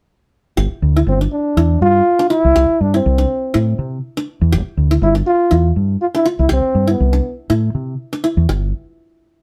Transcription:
0.57 0.68 G1 medium
0.57 0.74 G4 medium
0.72 muted fingered electric bass stroke soft
0.82 1.01 D2 medium
0.97 1.13 E4 medium
1.07 1.26 G1 loud
1.07 1.19 C4 medium
1.21 1.37 D4 medium
1.32 1.78 D4 medium
1.57 1.76 E2 medium
1.57 1.73 E4 medium
1.81 2.00 G2 medium
1.81 2.27 F4 loud
2.19 2.26 D4 medium
2.30 2.83 E4 loud
2.30 2.47 F4 medium
2.45 2.53 C2 medium
2.56 2.66 C2 medium
2.56 2.72 G4 medium
2.81 2.99 G2 medium
2.81 2.94 D4 medium
2.94 3.89 C4 medium
2.94 3.10 E4 medium
3.06 3.24 C2 loud
3.18 3.35 D4 medium
3.54 3.74 A2 medium
3.54 3.70 E4 medium
3.79 3.98 C3 medium
4.17 4.24 D4 medium
4.41 4.55 E2 medium
4.52 4.63 G1 medium
4.52 4.69 G4 medium
4.77 4.96 D2 medium
4.91 5.07 E4 medium
5.02 5.21 G1 loud
5.02 5.14 E4 medium
5.15 5.32 D4 medium
5.27 5.73 F4 loud
5.51 5.71 E2 medium
5.51 5.67 E4 medium
5.76 5.95 G2 medium
6.01 6.07 F4 loud
6.15 6.22 D4 medium
6.15 6.26 E4 medium
6.26 6.42 F4 medium
6.39 6.48 C2 medium
6.39 6.50 E4 medium
6.49 6.61 C2 medium
6.49 6.87 C4 loud
6.49 6.66 G4 medium
6.75 6.94 G2 medium
6.88 7.36 B3 medium
6.88 7.04 E4 medium
7.00 7.19 C2 loud
7.13 7.30 D4 medium
7.50 7.69 A2 medium
7.50 7.66 E4 medium
7.75 7.94 C3 medium
8.13 8.20 D4 medium
8.24 8.40 E4 medium
8.37 8.46 E2 medium
8.49 8.71 G1 medium
8.49 8.64 G3 medium

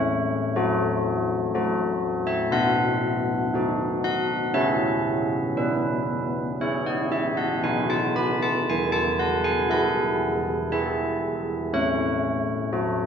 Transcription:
0.00 0.52 A3 medium
0.00 2.25 C#5 loud
0.56 1.51 F#4 medium
0.56 1.50 A4 medium
1.55 2.50 F#4 medium
1.55 2.50 A4 medium
2.27 2.52 E5 medium
2.52 3.50 B3 medium
2.52 3.99 F#5 loud
3.54 4.51 D#4 soft
3.54 4.51 A4 medium
4.04 4.53 F#5 medium
4.54 5.54 C#4 medium
4.54 5.53 E4 soft
4.54 5.54 G#4 soft
4.54 5.53 E5 medium
5.57 6.58 B3 medium
5.57 6.57 B4 medium
6.61 7.61 E4 soft
6.61 7.62 G#4 soft
6.61 6.87 C#5 medium
6.86 7.13 D#5 medium
7.12 7.39 E5 medium
7.37 7.64 F#5 medium
7.63 8.65 B3 medium
7.63 8.64 D#4 soft
7.63 8.64 F#4 soft
7.63 7.91 G#5 medium
7.90 8.17 A5 medium
8.16 8.43 B5 medium
8.42 8.69 A5 medium
8.69 9.68 E3 medium
8.69 8.95 G#5 medium
8.92 9.19 A5 medium
9.19 9.45 F#5 medium
9.44 9.70 G#5 medium
9.70 10.67 E4 soft
9.70 10.68 G#4 soft
9.70 10.68 F#5 medium
10.72 11.68 E4 soft
10.72 11.69 G#4 medium
10.72 11.68 E5 medium
11.73 12.69 A3 medium
11.73 13.06 C#5 medium
12.73 13.06 F#4 medium
12.73 13.06 A4 medium

